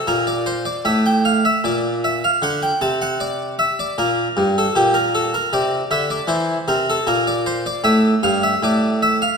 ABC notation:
X:1
M:3/4
L:1/16
Q:1/4=77
K:Bblyd
V:1 name="Harpsichord"
B d c d e g f e d2 e f | ^f g a f d2 e d B3 A | [K:Gdor] G B A B d2 e d c2 B A | B d c d e2 f e d2 e f |]
V:2 name="Harpsichord" clef=bass
B,,4 A,,4 B,,4 | D,2 C,6 B,,2 G,,2 | [K:Gdor] B,,4 C,2 D,2 E,2 C,2 | B,,4 A,,2 G,,2 A,,4 |]